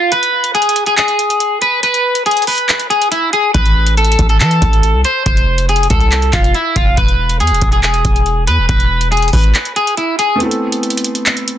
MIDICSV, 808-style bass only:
0, 0, Header, 1, 2, 480
1, 0, Start_track
1, 0, Key_signature, 0, "minor"
1, 0, Tempo, 428571
1, 132, Time_signature, 4, 2, 24, 8
1, 12971, End_track
2, 0, Start_track
2, 0, Title_t, "808-style bass"
2, 0, Program_c, 0, 38
2, 3971, Note_on_c, 0, 33, 115
2, 4663, Note_off_c, 0, 33, 0
2, 4692, Note_on_c, 0, 33, 98
2, 4932, Note_on_c, 0, 52, 100
2, 4949, Note_off_c, 0, 33, 0
2, 5160, Note_off_c, 0, 52, 0
2, 5172, Note_on_c, 0, 33, 107
2, 5531, Note_on_c, 0, 36, 98
2, 5548, Note_off_c, 0, 33, 0
2, 5646, Note_off_c, 0, 36, 0
2, 5892, Note_on_c, 0, 29, 117
2, 6583, Note_off_c, 0, 29, 0
2, 6611, Note_on_c, 0, 36, 100
2, 7072, Note_off_c, 0, 36, 0
2, 7092, Note_on_c, 0, 29, 108
2, 7322, Note_off_c, 0, 29, 0
2, 7570, Note_on_c, 0, 29, 104
2, 7802, Note_off_c, 0, 29, 0
2, 7811, Note_on_c, 0, 28, 110
2, 8292, Note_on_c, 0, 40, 97
2, 8309, Note_off_c, 0, 28, 0
2, 8412, Note_on_c, 0, 28, 102
2, 8429, Note_off_c, 0, 40, 0
2, 8526, Note_off_c, 0, 28, 0
2, 8531, Note_on_c, 0, 28, 100
2, 8992, Note_off_c, 0, 28, 0
2, 9013, Note_on_c, 0, 28, 102
2, 9493, Note_on_c, 0, 40, 98
2, 9509, Note_off_c, 0, 28, 0
2, 9612, Note_on_c, 0, 28, 98
2, 9629, Note_off_c, 0, 40, 0
2, 9726, Note_off_c, 0, 28, 0
2, 9732, Note_on_c, 0, 28, 119
2, 10423, Note_off_c, 0, 28, 0
2, 10452, Note_on_c, 0, 32, 105
2, 10692, Note_off_c, 0, 32, 0
2, 12971, End_track
0, 0, End_of_file